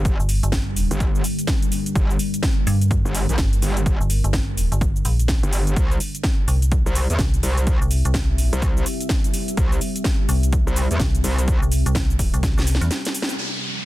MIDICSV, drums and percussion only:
0, 0, Header, 1, 2, 480
1, 0, Start_track
1, 0, Tempo, 476190
1, 50, Time_signature, 4, 2, 24, 8
1, 13961, End_track
2, 0, Start_track
2, 0, Title_t, "Drums"
2, 51, Note_on_c, 9, 36, 125
2, 51, Note_on_c, 9, 42, 71
2, 55, Note_on_c, 9, 82, 44
2, 152, Note_off_c, 9, 36, 0
2, 152, Note_off_c, 9, 42, 0
2, 156, Note_off_c, 9, 82, 0
2, 201, Note_on_c, 9, 82, 32
2, 290, Note_on_c, 9, 46, 99
2, 294, Note_off_c, 9, 82, 0
2, 294, Note_on_c, 9, 82, 68
2, 391, Note_off_c, 9, 46, 0
2, 395, Note_off_c, 9, 82, 0
2, 436, Note_on_c, 9, 42, 57
2, 440, Note_on_c, 9, 82, 34
2, 525, Note_on_c, 9, 38, 125
2, 530, Note_off_c, 9, 42, 0
2, 530, Note_on_c, 9, 42, 66
2, 531, Note_on_c, 9, 36, 121
2, 534, Note_off_c, 9, 82, 0
2, 534, Note_on_c, 9, 82, 44
2, 626, Note_off_c, 9, 38, 0
2, 631, Note_off_c, 9, 42, 0
2, 632, Note_off_c, 9, 36, 0
2, 635, Note_off_c, 9, 82, 0
2, 770, Note_on_c, 9, 46, 115
2, 774, Note_on_c, 9, 82, 79
2, 871, Note_off_c, 9, 46, 0
2, 875, Note_off_c, 9, 82, 0
2, 917, Note_on_c, 9, 42, 55
2, 921, Note_on_c, 9, 82, 34
2, 1011, Note_off_c, 9, 42, 0
2, 1011, Note_on_c, 9, 36, 127
2, 1011, Note_on_c, 9, 42, 72
2, 1015, Note_off_c, 9, 82, 0
2, 1015, Note_on_c, 9, 82, 43
2, 1112, Note_off_c, 9, 36, 0
2, 1112, Note_off_c, 9, 42, 0
2, 1116, Note_off_c, 9, 82, 0
2, 1161, Note_on_c, 9, 82, 31
2, 1251, Note_on_c, 9, 46, 108
2, 1255, Note_off_c, 9, 82, 0
2, 1255, Note_on_c, 9, 82, 80
2, 1352, Note_off_c, 9, 46, 0
2, 1356, Note_off_c, 9, 82, 0
2, 1397, Note_on_c, 9, 42, 52
2, 1401, Note_on_c, 9, 82, 33
2, 1486, Note_on_c, 9, 38, 127
2, 1491, Note_off_c, 9, 42, 0
2, 1491, Note_on_c, 9, 36, 120
2, 1491, Note_on_c, 9, 42, 64
2, 1495, Note_off_c, 9, 82, 0
2, 1495, Note_on_c, 9, 82, 45
2, 1587, Note_off_c, 9, 38, 0
2, 1592, Note_off_c, 9, 36, 0
2, 1592, Note_off_c, 9, 42, 0
2, 1596, Note_off_c, 9, 82, 0
2, 1637, Note_on_c, 9, 42, 61
2, 1641, Note_on_c, 9, 82, 31
2, 1731, Note_on_c, 9, 46, 109
2, 1735, Note_off_c, 9, 82, 0
2, 1735, Note_on_c, 9, 82, 76
2, 1738, Note_off_c, 9, 42, 0
2, 1832, Note_off_c, 9, 46, 0
2, 1836, Note_off_c, 9, 82, 0
2, 1877, Note_on_c, 9, 42, 56
2, 1881, Note_on_c, 9, 82, 33
2, 1971, Note_off_c, 9, 42, 0
2, 1971, Note_on_c, 9, 36, 126
2, 1971, Note_on_c, 9, 42, 66
2, 1975, Note_off_c, 9, 82, 0
2, 1975, Note_on_c, 9, 82, 46
2, 2072, Note_off_c, 9, 36, 0
2, 2072, Note_off_c, 9, 42, 0
2, 2076, Note_off_c, 9, 82, 0
2, 2121, Note_on_c, 9, 82, 31
2, 2210, Note_on_c, 9, 46, 103
2, 2214, Note_off_c, 9, 82, 0
2, 2214, Note_on_c, 9, 82, 68
2, 2311, Note_off_c, 9, 46, 0
2, 2315, Note_off_c, 9, 82, 0
2, 2356, Note_on_c, 9, 42, 52
2, 2360, Note_on_c, 9, 82, 32
2, 2446, Note_on_c, 9, 38, 124
2, 2451, Note_off_c, 9, 42, 0
2, 2451, Note_on_c, 9, 36, 127
2, 2451, Note_on_c, 9, 42, 62
2, 2455, Note_off_c, 9, 82, 0
2, 2455, Note_on_c, 9, 82, 43
2, 2546, Note_off_c, 9, 38, 0
2, 2551, Note_off_c, 9, 36, 0
2, 2552, Note_off_c, 9, 42, 0
2, 2556, Note_off_c, 9, 82, 0
2, 2690, Note_on_c, 9, 46, 112
2, 2694, Note_on_c, 9, 82, 77
2, 2791, Note_off_c, 9, 46, 0
2, 2795, Note_off_c, 9, 82, 0
2, 2837, Note_on_c, 9, 42, 54
2, 2841, Note_on_c, 9, 82, 34
2, 2931, Note_off_c, 9, 42, 0
2, 2931, Note_on_c, 9, 36, 127
2, 2931, Note_on_c, 9, 42, 65
2, 2935, Note_off_c, 9, 82, 0
2, 2935, Note_on_c, 9, 82, 44
2, 3031, Note_off_c, 9, 42, 0
2, 3032, Note_off_c, 9, 36, 0
2, 3035, Note_off_c, 9, 82, 0
2, 3082, Note_on_c, 9, 82, 31
2, 3171, Note_on_c, 9, 46, 112
2, 3175, Note_off_c, 9, 82, 0
2, 3175, Note_on_c, 9, 82, 77
2, 3271, Note_off_c, 9, 46, 0
2, 3276, Note_off_c, 9, 82, 0
2, 3318, Note_on_c, 9, 42, 48
2, 3322, Note_on_c, 9, 82, 31
2, 3406, Note_on_c, 9, 38, 127
2, 3411, Note_off_c, 9, 42, 0
2, 3411, Note_on_c, 9, 36, 122
2, 3411, Note_on_c, 9, 42, 66
2, 3415, Note_off_c, 9, 82, 0
2, 3415, Note_on_c, 9, 82, 43
2, 3506, Note_off_c, 9, 38, 0
2, 3512, Note_off_c, 9, 36, 0
2, 3512, Note_off_c, 9, 42, 0
2, 3516, Note_off_c, 9, 82, 0
2, 3557, Note_on_c, 9, 42, 63
2, 3561, Note_on_c, 9, 82, 30
2, 3651, Note_on_c, 9, 46, 114
2, 3655, Note_off_c, 9, 82, 0
2, 3655, Note_on_c, 9, 82, 78
2, 3658, Note_off_c, 9, 42, 0
2, 3752, Note_off_c, 9, 46, 0
2, 3756, Note_off_c, 9, 82, 0
2, 3798, Note_on_c, 9, 42, 54
2, 3802, Note_on_c, 9, 82, 34
2, 3891, Note_off_c, 9, 42, 0
2, 3891, Note_on_c, 9, 36, 127
2, 3891, Note_on_c, 9, 42, 67
2, 3895, Note_off_c, 9, 82, 0
2, 3895, Note_on_c, 9, 82, 46
2, 3992, Note_off_c, 9, 36, 0
2, 3992, Note_off_c, 9, 42, 0
2, 3996, Note_off_c, 9, 82, 0
2, 4042, Note_on_c, 9, 82, 33
2, 4131, Note_on_c, 9, 46, 111
2, 4135, Note_off_c, 9, 82, 0
2, 4135, Note_on_c, 9, 82, 76
2, 4231, Note_off_c, 9, 46, 0
2, 4236, Note_off_c, 9, 82, 0
2, 4277, Note_on_c, 9, 42, 52
2, 4281, Note_on_c, 9, 82, 33
2, 4366, Note_on_c, 9, 38, 114
2, 4371, Note_off_c, 9, 42, 0
2, 4371, Note_on_c, 9, 36, 127
2, 4371, Note_on_c, 9, 42, 62
2, 4375, Note_off_c, 9, 82, 0
2, 4375, Note_on_c, 9, 82, 45
2, 4467, Note_off_c, 9, 38, 0
2, 4472, Note_off_c, 9, 36, 0
2, 4472, Note_off_c, 9, 42, 0
2, 4476, Note_off_c, 9, 82, 0
2, 4611, Note_on_c, 9, 46, 111
2, 4615, Note_on_c, 9, 82, 76
2, 4712, Note_off_c, 9, 46, 0
2, 4716, Note_off_c, 9, 82, 0
2, 4757, Note_on_c, 9, 42, 52
2, 4761, Note_on_c, 9, 82, 35
2, 4851, Note_off_c, 9, 42, 0
2, 4851, Note_on_c, 9, 36, 126
2, 4851, Note_on_c, 9, 42, 65
2, 4855, Note_off_c, 9, 82, 0
2, 4855, Note_on_c, 9, 82, 45
2, 4952, Note_off_c, 9, 36, 0
2, 4952, Note_off_c, 9, 42, 0
2, 4956, Note_off_c, 9, 82, 0
2, 5000, Note_on_c, 9, 82, 33
2, 5090, Note_on_c, 9, 46, 117
2, 5094, Note_off_c, 9, 82, 0
2, 5094, Note_on_c, 9, 82, 79
2, 5191, Note_off_c, 9, 46, 0
2, 5195, Note_off_c, 9, 82, 0
2, 5236, Note_on_c, 9, 42, 48
2, 5240, Note_on_c, 9, 82, 33
2, 5325, Note_on_c, 9, 38, 124
2, 5330, Note_off_c, 9, 42, 0
2, 5330, Note_on_c, 9, 42, 64
2, 5331, Note_on_c, 9, 36, 121
2, 5334, Note_off_c, 9, 82, 0
2, 5334, Note_on_c, 9, 82, 43
2, 5426, Note_off_c, 9, 38, 0
2, 5431, Note_off_c, 9, 42, 0
2, 5432, Note_off_c, 9, 36, 0
2, 5435, Note_off_c, 9, 82, 0
2, 5477, Note_on_c, 9, 42, 61
2, 5481, Note_on_c, 9, 82, 31
2, 5570, Note_on_c, 9, 46, 113
2, 5574, Note_off_c, 9, 82, 0
2, 5574, Note_on_c, 9, 82, 77
2, 5578, Note_off_c, 9, 42, 0
2, 5671, Note_off_c, 9, 46, 0
2, 5675, Note_off_c, 9, 82, 0
2, 5716, Note_on_c, 9, 42, 52
2, 5721, Note_on_c, 9, 82, 33
2, 5811, Note_off_c, 9, 42, 0
2, 5811, Note_on_c, 9, 36, 124
2, 5811, Note_on_c, 9, 42, 67
2, 5815, Note_off_c, 9, 82, 0
2, 5815, Note_on_c, 9, 82, 46
2, 5911, Note_off_c, 9, 42, 0
2, 5912, Note_off_c, 9, 36, 0
2, 5915, Note_off_c, 9, 82, 0
2, 5961, Note_on_c, 9, 82, 32
2, 6050, Note_on_c, 9, 46, 96
2, 6054, Note_off_c, 9, 82, 0
2, 6054, Note_on_c, 9, 82, 75
2, 6151, Note_off_c, 9, 46, 0
2, 6155, Note_off_c, 9, 82, 0
2, 6196, Note_on_c, 9, 42, 51
2, 6200, Note_on_c, 9, 82, 34
2, 6285, Note_on_c, 9, 38, 110
2, 6290, Note_off_c, 9, 42, 0
2, 6290, Note_on_c, 9, 42, 62
2, 6291, Note_on_c, 9, 36, 123
2, 6294, Note_off_c, 9, 82, 0
2, 6294, Note_on_c, 9, 82, 46
2, 6386, Note_off_c, 9, 38, 0
2, 6391, Note_off_c, 9, 42, 0
2, 6392, Note_off_c, 9, 36, 0
2, 6395, Note_off_c, 9, 82, 0
2, 6530, Note_on_c, 9, 46, 105
2, 6534, Note_on_c, 9, 82, 76
2, 6631, Note_off_c, 9, 46, 0
2, 6635, Note_off_c, 9, 82, 0
2, 6676, Note_on_c, 9, 42, 50
2, 6680, Note_on_c, 9, 82, 36
2, 6770, Note_off_c, 9, 42, 0
2, 6770, Note_on_c, 9, 42, 67
2, 6771, Note_on_c, 9, 36, 121
2, 6774, Note_off_c, 9, 82, 0
2, 6774, Note_on_c, 9, 82, 45
2, 6870, Note_off_c, 9, 42, 0
2, 6872, Note_off_c, 9, 36, 0
2, 6874, Note_off_c, 9, 82, 0
2, 6920, Note_on_c, 9, 82, 35
2, 7010, Note_on_c, 9, 46, 110
2, 7014, Note_off_c, 9, 82, 0
2, 7014, Note_on_c, 9, 82, 83
2, 7110, Note_off_c, 9, 46, 0
2, 7115, Note_off_c, 9, 82, 0
2, 7156, Note_on_c, 9, 42, 49
2, 7160, Note_on_c, 9, 82, 35
2, 7244, Note_on_c, 9, 38, 115
2, 7250, Note_off_c, 9, 42, 0
2, 7250, Note_on_c, 9, 42, 65
2, 7251, Note_on_c, 9, 36, 118
2, 7254, Note_off_c, 9, 82, 0
2, 7254, Note_on_c, 9, 82, 45
2, 7345, Note_off_c, 9, 38, 0
2, 7350, Note_off_c, 9, 42, 0
2, 7351, Note_off_c, 9, 36, 0
2, 7354, Note_off_c, 9, 82, 0
2, 7396, Note_on_c, 9, 42, 59
2, 7400, Note_on_c, 9, 82, 33
2, 7490, Note_on_c, 9, 46, 113
2, 7494, Note_off_c, 9, 82, 0
2, 7494, Note_on_c, 9, 82, 82
2, 7497, Note_off_c, 9, 42, 0
2, 7590, Note_off_c, 9, 46, 0
2, 7594, Note_off_c, 9, 82, 0
2, 7635, Note_on_c, 9, 42, 51
2, 7639, Note_on_c, 9, 82, 34
2, 7730, Note_off_c, 9, 42, 0
2, 7730, Note_on_c, 9, 42, 70
2, 7731, Note_on_c, 9, 36, 118
2, 7734, Note_off_c, 9, 82, 0
2, 7734, Note_on_c, 9, 82, 50
2, 7830, Note_off_c, 9, 42, 0
2, 7831, Note_off_c, 9, 36, 0
2, 7834, Note_off_c, 9, 82, 0
2, 7880, Note_on_c, 9, 82, 36
2, 7970, Note_on_c, 9, 46, 103
2, 7974, Note_off_c, 9, 82, 0
2, 7974, Note_on_c, 9, 82, 74
2, 8071, Note_off_c, 9, 46, 0
2, 8075, Note_off_c, 9, 82, 0
2, 8116, Note_on_c, 9, 42, 54
2, 8120, Note_on_c, 9, 82, 36
2, 8204, Note_on_c, 9, 38, 114
2, 8210, Note_off_c, 9, 42, 0
2, 8210, Note_on_c, 9, 42, 65
2, 8211, Note_on_c, 9, 36, 113
2, 8214, Note_off_c, 9, 82, 0
2, 8214, Note_on_c, 9, 82, 48
2, 8305, Note_off_c, 9, 38, 0
2, 8311, Note_off_c, 9, 36, 0
2, 8311, Note_off_c, 9, 42, 0
2, 8315, Note_off_c, 9, 82, 0
2, 8450, Note_on_c, 9, 46, 104
2, 8455, Note_on_c, 9, 82, 84
2, 8551, Note_off_c, 9, 46, 0
2, 8555, Note_off_c, 9, 82, 0
2, 8597, Note_on_c, 9, 42, 56
2, 8601, Note_on_c, 9, 82, 36
2, 8691, Note_off_c, 9, 42, 0
2, 8691, Note_on_c, 9, 36, 125
2, 8691, Note_on_c, 9, 42, 68
2, 8695, Note_off_c, 9, 82, 0
2, 8695, Note_on_c, 9, 82, 51
2, 8792, Note_off_c, 9, 36, 0
2, 8792, Note_off_c, 9, 42, 0
2, 8796, Note_off_c, 9, 82, 0
2, 8841, Note_on_c, 9, 82, 35
2, 8931, Note_on_c, 9, 46, 103
2, 8935, Note_off_c, 9, 82, 0
2, 8935, Note_on_c, 9, 82, 89
2, 9032, Note_off_c, 9, 46, 0
2, 9036, Note_off_c, 9, 82, 0
2, 9077, Note_on_c, 9, 42, 51
2, 9081, Note_on_c, 9, 82, 35
2, 9165, Note_on_c, 9, 38, 114
2, 9170, Note_off_c, 9, 42, 0
2, 9170, Note_on_c, 9, 42, 67
2, 9171, Note_on_c, 9, 36, 112
2, 9175, Note_off_c, 9, 82, 0
2, 9175, Note_on_c, 9, 82, 49
2, 9266, Note_off_c, 9, 38, 0
2, 9271, Note_off_c, 9, 42, 0
2, 9272, Note_off_c, 9, 36, 0
2, 9275, Note_off_c, 9, 82, 0
2, 9316, Note_on_c, 9, 42, 61
2, 9321, Note_on_c, 9, 82, 33
2, 9410, Note_on_c, 9, 46, 109
2, 9414, Note_off_c, 9, 82, 0
2, 9414, Note_on_c, 9, 82, 85
2, 9417, Note_off_c, 9, 42, 0
2, 9511, Note_off_c, 9, 46, 0
2, 9515, Note_off_c, 9, 82, 0
2, 9557, Note_on_c, 9, 42, 54
2, 9561, Note_on_c, 9, 82, 37
2, 9650, Note_off_c, 9, 42, 0
2, 9650, Note_on_c, 9, 42, 71
2, 9651, Note_on_c, 9, 36, 119
2, 9654, Note_off_c, 9, 82, 0
2, 9654, Note_on_c, 9, 82, 50
2, 9751, Note_off_c, 9, 42, 0
2, 9752, Note_off_c, 9, 36, 0
2, 9755, Note_off_c, 9, 82, 0
2, 9800, Note_on_c, 9, 82, 34
2, 9890, Note_on_c, 9, 46, 93
2, 9894, Note_off_c, 9, 82, 0
2, 9894, Note_on_c, 9, 82, 78
2, 9990, Note_off_c, 9, 46, 0
2, 9995, Note_off_c, 9, 82, 0
2, 10036, Note_on_c, 9, 42, 58
2, 10040, Note_on_c, 9, 82, 36
2, 10124, Note_on_c, 9, 38, 119
2, 10129, Note_off_c, 9, 42, 0
2, 10129, Note_on_c, 9, 42, 69
2, 10130, Note_on_c, 9, 36, 113
2, 10133, Note_off_c, 9, 82, 0
2, 10133, Note_on_c, 9, 82, 48
2, 10225, Note_off_c, 9, 38, 0
2, 10230, Note_off_c, 9, 42, 0
2, 10231, Note_off_c, 9, 36, 0
2, 10234, Note_off_c, 9, 82, 0
2, 10369, Note_on_c, 9, 46, 104
2, 10374, Note_on_c, 9, 82, 87
2, 10470, Note_off_c, 9, 46, 0
2, 10474, Note_off_c, 9, 82, 0
2, 10516, Note_on_c, 9, 42, 56
2, 10520, Note_on_c, 9, 82, 38
2, 10610, Note_off_c, 9, 42, 0
2, 10610, Note_on_c, 9, 36, 118
2, 10610, Note_on_c, 9, 42, 71
2, 10614, Note_off_c, 9, 82, 0
2, 10614, Note_on_c, 9, 82, 49
2, 10710, Note_off_c, 9, 42, 0
2, 10711, Note_off_c, 9, 36, 0
2, 10714, Note_off_c, 9, 82, 0
2, 10760, Note_on_c, 9, 82, 36
2, 10849, Note_on_c, 9, 46, 104
2, 10853, Note_off_c, 9, 82, 0
2, 10853, Note_on_c, 9, 82, 86
2, 10950, Note_off_c, 9, 46, 0
2, 10954, Note_off_c, 9, 82, 0
2, 10995, Note_on_c, 9, 42, 53
2, 10999, Note_on_c, 9, 82, 35
2, 11084, Note_on_c, 9, 38, 121
2, 11089, Note_off_c, 9, 42, 0
2, 11089, Note_on_c, 9, 42, 67
2, 11090, Note_on_c, 9, 36, 113
2, 11093, Note_off_c, 9, 82, 0
2, 11093, Note_on_c, 9, 82, 50
2, 11184, Note_off_c, 9, 38, 0
2, 11190, Note_off_c, 9, 42, 0
2, 11191, Note_off_c, 9, 36, 0
2, 11194, Note_off_c, 9, 82, 0
2, 11235, Note_on_c, 9, 42, 65
2, 11239, Note_on_c, 9, 82, 36
2, 11329, Note_on_c, 9, 46, 102
2, 11333, Note_off_c, 9, 82, 0
2, 11333, Note_on_c, 9, 82, 86
2, 11336, Note_off_c, 9, 42, 0
2, 11430, Note_off_c, 9, 46, 0
2, 11434, Note_off_c, 9, 82, 0
2, 11476, Note_on_c, 9, 42, 57
2, 11480, Note_on_c, 9, 82, 37
2, 11569, Note_off_c, 9, 42, 0
2, 11569, Note_on_c, 9, 42, 75
2, 11570, Note_on_c, 9, 36, 115
2, 11573, Note_off_c, 9, 82, 0
2, 11573, Note_on_c, 9, 82, 48
2, 11670, Note_off_c, 9, 42, 0
2, 11671, Note_off_c, 9, 36, 0
2, 11674, Note_off_c, 9, 82, 0
2, 11720, Note_on_c, 9, 82, 36
2, 11809, Note_on_c, 9, 46, 103
2, 11813, Note_off_c, 9, 82, 0
2, 11813, Note_on_c, 9, 82, 77
2, 11910, Note_off_c, 9, 46, 0
2, 11914, Note_off_c, 9, 82, 0
2, 11956, Note_on_c, 9, 42, 57
2, 11960, Note_on_c, 9, 82, 37
2, 12045, Note_on_c, 9, 38, 118
2, 12050, Note_off_c, 9, 42, 0
2, 12050, Note_on_c, 9, 36, 119
2, 12050, Note_on_c, 9, 42, 67
2, 12054, Note_off_c, 9, 82, 0
2, 12054, Note_on_c, 9, 82, 48
2, 12145, Note_off_c, 9, 38, 0
2, 12151, Note_off_c, 9, 36, 0
2, 12151, Note_off_c, 9, 42, 0
2, 12155, Note_off_c, 9, 82, 0
2, 12200, Note_on_c, 9, 82, 33
2, 12289, Note_on_c, 9, 46, 106
2, 12290, Note_on_c, 9, 36, 60
2, 12293, Note_off_c, 9, 82, 0
2, 12293, Note_on_c, 9, 82, 88
2, 12390, Note_off_c, 9, 46, 0
2, 12391, Note_off_c, 9, 36, 0
2, 12394, Note_off_c, 9, 82, 0
2, 12436, Note_on_c, 9, 42, 60
2, 12440, Note_on_c, 9, 82, 35
2, 12530, Note_off_c, 9, 42, 0
2, 12530, Note_on_c, 9, 36, 124
2, 12530, Note_on_c, 9, 38, 74
2, 12530, Note_on_c, 9, 42, 75
2, 12534, Note_off_c, 9, 82, 0
2, 12534, Note_on_c, 9, 82, 49
2, 12630, Note_off_c, 9, 38, 0
2, 12630, Note_off_c, 9, 42, 0
2, 12631, Note_off_c, 9, 36, 0
2, 12634, Note_off_c, 9, 82, 0
2, 12680, Note_on_c, 9, 82, 34
2, 12690, Note_on_c, 9, 38, 79
2, 12770, Note_on_c, 9, 46, 103
2, 12774, Note_off_c, 9, 82, 0
2, 12774, Note_on_c, 9, 82, 84
2, 12790, Note_off_c, 9, 38, 0
2, 12850, Note_on_c, 9, 38, 88
2, 12871, Note_off_c, 9, 46, 0
2, 12875, Note_off_c, 9, 82, 0
2, 12917, Note_on_c, 9, 42, 56
2, 12921, Note_on_c, 9, 82, 35
2, 12951, Note_off_c, 9, 38, 0
2, 13010, Note_off_c, 9, 42, 0
2, 13010, Note_on_c, 9, 38, 92
2, 13010, Note_on_c, 9, 42, 72
2, 13015, Note_off_c, 9, 82, 0
2, 13015, Note_on_c, 9, 82, 48
2, 13111, Note_off_c, 9, 38, 0
2, 13111, Note_off_c, 9, 42, 0
2, 13115, Note_off_c, 9, 82, 0
2, 13157, Note_on_c, 9, 42, 67
2, 13161, Note_on_c, 9, 82, 34
2, 13170, Note_on_c, 9, 38, 99
2, 13250, Note_on_c, 9, 46, 106
2, 13254, Note_off_c, 9, 82, 0
2, 13254, Note_on_c, 9, 82, 81
2, 13257, Note_off_c, 9, 42, 0
2, 13271, Note_off_c, 9, 38, 0
2, 13330, Note_on_c, 9, 38, 110
2, 13350, Note_off_c, 9, 46, 0
2, 13354, Note_off_c, 9, 82, 0
2, 13396, Note_on_c, 9, 42, 59
2, 13400, Note_on_c, 9, 82, 37
2, 13431, Note_off_c, 9, 38, 0
2, 13497, Note_off_c, 9, 42, 0
2, 13501, Note_off_c, 9, 82, 0
2, 13961, End_track
0, 0, End_of_file